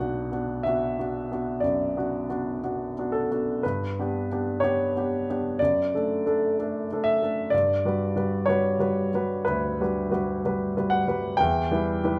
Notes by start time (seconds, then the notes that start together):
Already playing: B1 F#5
0.00 B3 D4 F#4
0.32 B3 D4 F#4
0.63 B3 D4 E5
0.68 F#4
0.99 B3 D4 F#4
1.32 B3 D4 F#4
1.60 F#2 D5
1.97 B3 D4 F#4
2.29 B3 D4 F#4
2.64 B3 D4 F#4
2.98 B3 D4 F#4
3.12 A4
3.31 B3 D4 F#4
3.63 G2 B4
3.99 B3 D4 G4
4.32 B3 D4 G4
4.60 B3 C#5
4.64 D4 G4
4.97 B3 D4 G4
5.30 B3 D4 G4
5.59 F#2 D5
5.94 A3 D4 A4
6.26 A3 D4 A4
6.59 A3 D4 A4
6.92 A3 D4 A4
7.04 E5
7.22 A3 D4 A4
7.50 G2 D5
7.85 G3 F#4 B4
8.16 G3 F#4 B4
8.46 G3 F#4 B4 C#5
8.79 G3 F#4 B4
9.14 G3 F#4 B4
9.45 D2 B4
9.81 G3 F#4 B4
10.11 G3 F#4 B4
10.45 G3 F#4 B4
10.77 G3 F#4 B4
10.90 F#5
11.08 G3 F#4 B4
11.37 E2 G5
11.71 G3 E4 B4
12.03 G3 E4 B4